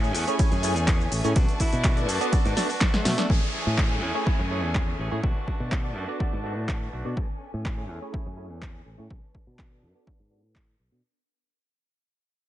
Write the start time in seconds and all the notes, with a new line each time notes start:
Already playing: A2 E3 A3 C#4 G#4 G#5
0.03 A3 C#4 E4 G#4 C#5, shaker
0.15 E2 E3 A3 C#4 G#4, open hi-hat, shaker
0.27 A3 C#4 E4 G#4 C#5, closed hi-hat, shaker
0.39 A3 C#4 E4 G#4 C#5, muted fingered electric bass stroke, kick, closed hi-hat, ride, shaker
0.51 F#2 A3 C#4 G#4, closed hi-hat, shaker
0.63 E3 A3 C#4 E4 G#4 C#5, open hi-hat, shaker
0.75 E2 A3 C#4 G#4, closed hi-hat, shaker
0.87 E3 A3 C#4 G#4, kick, clap, closed hi-hat, ride, shaker
1.01 shaker
1.12 A1, open hi-hat, shaker
1.24 A2 A3 C#4 E4 G#4 C#5, closed hi-hat, shaker
1.35 B1 A3 D4 F#4 B4 A5, kick, closed hi-hat, ride, shaker
1.48 closed hi-hat, shaker
1.59 A3 D4 E4 F#4, kick, open hi-hat, shaker
1.72 B2 D4 F#4, closed hi-hat, shaker
1.84 A3 D4 F#4, kick, clap, closed hi-hat, ride, shaker
1.96 B3 D4 F#4 A4 D5, closed hi-hat, shaker
2.08 F#2 A3 D4 F#4, open hi-hat, shaker
2.20 B3 D4 F#4 A4 D5, closed hi-hat, shaker
2.32 B3 D4 F#4 A4 D5, kick, closed hi-hat, ride, shaker
2.45 G#2 D4 F#4, closed hi-hat, shaker
2.56 A3 B3 D4 F#4 A4 D5, snare, open hi-hat, shaker
2.69 D4 F#4, open hi-hat, shaker
2.81 A3 D4 F#4, kick, snare, clap, closed hi-hat, ride, shaker
2.94 A3, snare, shaker
3.05 B2, snare, open hi-hat, shaker
3.18 B3 D4 F#4 A4 D5, snare, closed hi-hat, shaker
3.29 A1 E3 A3 C#4 G#4 G#5, kick, downlifter
3.53 E3 A3 C#4 G#4
3.67 A2
3.78 kick, clap
3.90 A3 C#4 E4 G#4 C#5
4.02 E2 E3 A3 C#4 G#4
4.14 A3 C#4 E4 G#4 C#5
4.26 E3 A3 C#4 E4 G#4 C#5, muted fingered electric bass stroke, kick
4.39 F#2 A3 C#4 G#4
4.50 E3 A3 C#4 E4 G#4 C#5
4.63 E2
4.75 E3 A3 G#4, kick, clap
4.98 A1 E3 A3 C#4 G#4
5.11 A2 A3 C#4 E4 G#4 C#5
5.22 B1 A3 D4 F#4 B4 A5, kick
5.47 A3 D4 F#4, kick
5.60 B2
5.72 kick, clap
5.83 B3 D4 F#4 A4 D5
5.95 F#2 A3 D4 F#4
6.08 B3 D4 F#4 A4 D5
6.19 A3 B3 D4 F#4 A4 D5, kick
6.33 G#2 D4 F#4
6.43 A3 B3 D4 F#4 A4 D5
6.57 A2
6.69 A3 D4 F#4, kick, clap
6.93 B1 A3 D4 F#4
7.04 B2 B3 D4 F#4 A4 D5
7.17 A1 C#4 A4 G#5, kick
7.54 A2
7.65 kick, clap
7.77 A3 C#4 E4 G#4 C#5
7.90 E2
8.01 A3 C#4 E4 G#4 C#5
8.12 A3 C#4 E4 G#4 C#5, muted fingered electric bass stroke, kick
8.26 F#2
8.37 A3 C#4 E4 G#4 C#5
8.51 E2
8.62 kick, clap
8.86 A1
8.98 A2 A3 C#4 E4 G#4 C#5
9.10 B1 D4 B4 A5, kick
9.35 kick
9.47 B2
9.59 kick, clap
9.71 B3 D4 F#4 A4 D5
9.83 F#2
9.95 B3 D4 F#4 A4 D5
10.06 B3 D4 F#4 A4 D5, kick
10.20 G#2
10.30 B3 D4 F#4 A4 D5
10.44 A2
10.55 kick, clap
10.80 B1
10.91 B2 B3 D4 F#4 A4 D5